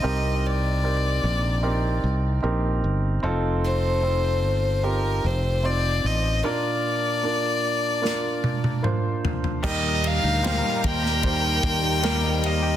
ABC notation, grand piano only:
X:1
M:4/4
L:1/8
Q:1/4=75
K:Eb
V:1 name="Grand piano"
[CEGB]2 [CEGB]2 [CEGB]2 [CEGB]2 | [CEF=A]2 [CEFA]2 [CEFG]2 [CEFc]2 | [B,DFB]2 [B,DFB]2 [B,DFB]2 [B,DFc]2 | [G,B,EGB]2 [G,B,EGc]2 [G,B,EGc]2 [G,B,EGB]2 |]
V:2 name="Grand piano" clef=bass
C,3 z4 z | z8 | B,,3 z4 z | B,,3 z4 z |]